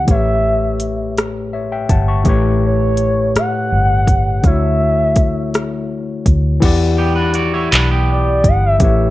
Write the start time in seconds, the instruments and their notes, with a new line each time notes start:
0.05 fingered electric bass A1, tine electric piano A2 A3 G4, kick, closed hi-hat
0.10 tine electric piano B4 C#5, soft synth lead E5
0.80 closed hi-hat
1.18 cross-stick, closed hi-hat
1.53 tine electric piano C#5 E5
1.72 tine electric piano E5 G5
1.89 fingered electric bass G1, tine electric piano F#5 A5, kick, closed hi-hat
2.08 tine electric piano A5 C#6
2.24 fingered electric bass A1, tine electric piano A2 A3 G4 B4, kick, closed hi-hat
2.29 tine electric piano C#5
2.65 soft synth lead C#5
2.97 closed hi-hat
3.35 soft synth lead F#5, muted fingered electric bass stroke, cross-stick, closed hi-hat
3.72 fingered electric bass G1
4.07 kick, closed hi-hat
4.42 fingered electric bass D2, tine electric piano D3 A3 E4, soft synth lead E5, kick, closed hi-hat
4.46 tine electric piano F#4 C#5
5.16 kick, closed hi-hat
5.54 cross-stick, closed hi-hat
6.26 fingered electric bass D2, kick, closed hi-hat
6.60 fingered electric bass E2, tine electric piano E3 E4 G4 F#5, kick, closed hi-hat, crash
6.65 tine electric piano D5
6.98 clean electric guitar B3 G4
7.16 clean electric guitar D4 B4
7.34 clean electric guitar F#4 D5, closed hi-hat
7.54 clean electric guitar E4 C#5
7.71 fingered electric bass B1, clean electric guitar D4 B4, clap, closed hi-hat
7.91 clean electric guitar B3 G4
8.11 soft synth lead D5
8.44 fingered electric bass G1, soft synth lead F#5, kick, closed hi-hat
8.65 soft synth lead E5
8.79 fingered electric bass A1, tine electric piano A3 E4 G4, soft synth lead E5, kick, closed hi-hat
8.83 tine electric piano B4 C#5